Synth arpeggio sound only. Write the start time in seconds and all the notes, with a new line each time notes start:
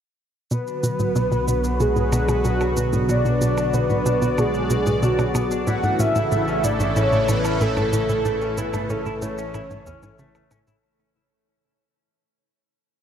0.51 B2
0.83 B2
1.00 A2
1.16 B2
1.32 B2
1.48 B2
1.80 B2
1.96 A2
2.12 B2
2.28 B2
2.45 B2
2.77 B2
2.93 A2
3.09 B2
3.25 B2
3.41 B2
3.74 B2
3.90 A2
4.06 B2
4.22 B2
4.38 B2
4.70 B2
4.87 A2
5.03 B2
5.19 B2
5.35 B2
5.67 A2
5.83 G#2
5.99 A2
6.16 A2
6.32 A2
6.64 A2
6.80 G#2
6.96 A2
7.12 A2
7.29 A2
7.61 A2
7.77 G#2
7.93 A2
8.09 A2
8.25 A2
8.57 A2
8.74 G#2
8.90 A2
9.06 A2
9.22 A2
9.54 A2
9.70 G#2
9.87 E2
10.03 G#2
10.19 C#3
10.51 A2
10.67 A2